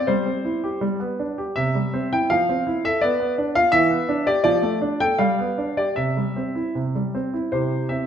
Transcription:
0.07 G3 C5
0.26 C4
0.45 E4
0.64 G4
0.81 G3
1.00 B3
1.19 D4
1.38 G4
1.56 C3 E5
1.75 G3
1.94 C4
2.12 E4 G5
2.30 F3 F5
2.49 C4
2.67 E4
2.85 A4 E5
3.01 B3 D5
3.20 B3
3.38 D4
3.55 F4 F5
3.72 E3 E5
3.91 B3
4.09 D4
4.26 G4 D5
4.44 F3 D5
4.62 A3
4.82 D4
5.00 A4 G5
5.18 G3 F5
5.39 B3
5.58 D4
5.77 G4 D5
5.96 C3 E5
6.17 G3
6.36 C4
6.55 E4
6.75 C3
6.95 G3
7.15 C4
7.34 E4
7.52 C3 E4 G4 C5
7.89 C4 E5

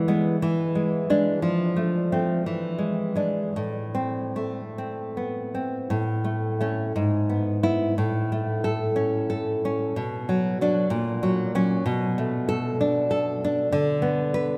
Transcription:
Already playing: E3
0.08 G#3 B3
0.42 E3
0.75 G#3
1.10 G#3 D4
1.42 F3
1.76 A3
2.12 A3 C4
2.46 E3
2.78 G#3
3.16 G#3 D4
3.56 A2
3.95 C4
4.36 A3
4.78 C4
5.17 B3
5.55 C4
5.90 A2
6.24 A3
6.61 A3 C#4
6.96 G#2
7.30 B3
7.63 B3 E4
7.98 A2
8.32 A3
8.64 A4
8.96 C#4
9.30 A4
9.65 C#4
9.96 B2
10.29 F#3
10.61 F#3 D4
10.90 A#2
11.23 F#3
11.55 F#3 C#4
11.86 B2
12.18 A3
12.49 A4
12.81 D4
13.11 A4
13.45 D4
13.72 D3
14.02 B3
14.34 B4

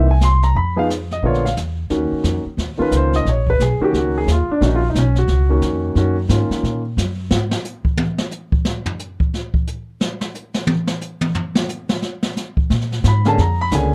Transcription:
Already playing: C2
0.11 G#5
0.21 C6, snare, hi-hat pedal
0.42 A#5, snare
0.55 F2 B5, brush sweep, kick
0.76 F3 B3 D#4 G#4 F5
0.90 snare, hi-hat pedal
1.11 D#5, snare
1.22 A#1 D3 A#3 B3 F4 C#5, brush sweep, kick
1.34 snare
1.45 F5, snare
1.57 E2, snare, hi-hat pedal
1.90 D#2 D#3 A#3 C#4 F#4, brush sweep, kick, snare
2.12 muted upright bass stroke
2.24 F2, kick, snare, hi-hat pedal
2.45 muted upright bass stroke
2.57 D#2, brush sweep, kick, snare
2.77 D#3 A#3 C#4 F4, muted upright bass stroke
2.82 B4
2.91 C#2, kick, snare, hi-hat pedal
2.96 C5
3.13 D#5, snare
3.25 A#1, brush sweep, kick, snare
3.29 C#5
3.47 B4, kick
3.60 B1 G#4, kick, snare, hi-hat pedal
3.80 D#3 A#3 C#4 F#4, muted upright bass stroke
3.84 G4
3.93 C#2, brush sweep, kick, snare
3.98 F#4
4.18 G#4
4.27 D#2, kick, snare, hi-hat pedal
4.32 F4
4.48 D4, muted upright bass stroke
4.61 A#1 D#3 A#3 C#4 F#4, brush sweep, kick, snare
4.66 D#4
4.76 F4
4.90 D#4
4.94 B1, kick, snare, hi-hat pedal
4.99 C#4
5.16 F#4, snare
5.28 C#2, brush sweep, kick, snare
5.49 D#3 A#3 C#4 F#4
5.62 F2, kick, snare, hi-hat pedal
5.95 F#2 D#3 A#3 C#4 F#4, brush sweep, kick, snare
6.29 G#2 D#3 A#3 C#4 F4, kick, snare, hi-hat pedal
6.50 muted upright bass stroke, snare
6.63 A#2, brush sweep, kick, snare
6.97 F#2, kick, snare, hi-hat pedal
7.31 G#2, snare
7.51 snare
7.65 hi-hat pedal
7.85 kick
7.97 high tom
8.18 snare
8.31 hi-hat pedal
8.52 kick
8.65 snare
8.86 floor tom
8.99 hi-hat pedal
9.20 kick
9.34 snare
9.54 kick
9.67 hi-hat pedal
10.01 snare
10.21 snare
10.35 hi-hat pedal
10.54 snare
10.67 high tom
10.87 snare
11.01 hi-hat pedal
11.21 high tom
11.35 floor tom
11.55 snare
11.69 hi-hat pedal
11.89 snare
12.02 snare
12.23 snare
12.36 snare, hi-hat pedal
12.57 kick
12.70 A#2, brush sweep, kick, snare
12.81 snare
12.92 snare
13.04 G#2 B5, kick, snare, hi-hat pedal
13.25 D3 A#3 C#4 G#4 A5, snare
13.38 F2 A#5, brush sweep, kick, snare
13.61 B5
13.71 C#2 D3 A#3 C#4 G#4 G#5, kick, snare, hi-hat pedal

